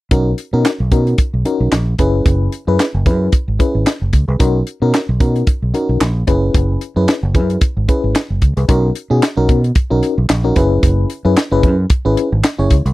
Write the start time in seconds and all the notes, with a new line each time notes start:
0.11 B1 C#4 D#4 F#4 A#4, kick, closed hi-hat
0.38 closed hi-hat
0.53 B2 C#4 D#4 F#4 A#4
0.65 snare, clap, closed hi-hat
0.80 B1
0.91 B2 C#4 D#4 F#4 A#4, kick, closed hi-hat
1.07 closed hi-hat
1.18 kick, closed hi-hat
1.34 B1
1.45 C#4 D#4 F#4 A#4, closed hi-hat
1.60 B1
1.72 A#1, snare, clap, closed hi-hat
1.99 F#1 C#4 E4 G#4 B4, kick, closed hi-hat
2.26 F#1, kick, closed hi-hat
2.52 closed hi-hat
2.67 F#2 C#4 E4 G#4 B4
2.79 snare, clap, closed hi-hat
2.94 F#1
3.06 F#2 C#4 E4 G#4 B4, kick, closed hi-hat
3.32 kick, closed hi-hat
3.48 G#1
3.59 C#4 E4 G#4 B4, kick, closed hi-hat
3.75 G#1
3.86 snare, clap, closed hi-hat
4.02 F#1
4.13 C#2, kick, closed hi-hat
4.28 C2 G#4 B4
4.39 B1 C#4 D#4 F#4 A#4, kick, closed hi-hat
4.67 closed hi-hat
4.82 B2 C#4 D#4 F#4 A#4
4.94 snare, clap, closed hi-hat
5.09 B1
5.20 B2 C#4 D#4 F#4 A#4, kick, closed hi-hat
5.36 closed hi-hat
5.47 kick, closed hi-hat
5.62 B1
5.74 C#4 D#4 F#4 A#4, closed hi-hat
5.89 B1
6.01 A#1, snare, clap, closed hi-hat
6.27 F#1 C#4 E4 G#4 B4, kick, closed hi-hat
6.54 F#1, kick, closed hi-hat
6.81 closed hi-hat
6.96 F#2 C#4 E4 G#4 B4
7.08 snare, clap, closed hi-hat
7.23 F#1
7.35 F#2 C#4 E4 G#4 B4, kick, closed hi-hat
7.50 closed hi-hat
7.61 kick, closed hi-hat
7.77 G#1
7.88 C#4 E4 G#4 B4, kick, closed hi-hat
8.04 G#1
8.15 snare, clap, closed hi-hat
8.30 F#1
8.42 C#2, kick, closed hi-hat
8.57 C2 G#4 B4, closed hi-hat
8.68 B1 C#4 D#4 F#4 A#4, kick, closed hi-hat
8.95 closed hi-hat
9.10 B2 C#4 D#4 F#4 G#4
9.22 snare, clap, closed hi-hat
9.37 B1 C#4 D#4 F#4 A#4
9.49 B2, kick, closed hi-hat
9.64 closed hi-hat
9.75 kick, closed hi-hat
9.90 B1 C#4 D#4 F#4 A#4
10.03 closed hi-hat
10.18 B1
10.29 A#1, snare, clap, closed hi-hat
10.44 C#4 D#4 F#4 A#4
10.56 F#1 C#4 E4 G#4 B4, kick, closed hi-hat
10.83 F#1, kick, closed hi-hat
11.10 closed hi-hat
11.25 F#2 C#4 E4 G#4 B4
11.37 snare, clap, closed hi-hat
11.51 F#1 C#4 E4 G#4 B4
11.63 F#2, kick, closed hi-hat
11.90 kick, closed hi-hat
12.05 G#1 C#4 E4 G#4 B4
12.17 closed hi-hat
12.32 G#1
12.44 snare, clap, closed hi-hat
12.59 F#1 C#4 E4 G#4 C#5
12.70 C#2, kick, closed hi-hat
12.85 C2, closed hi-hat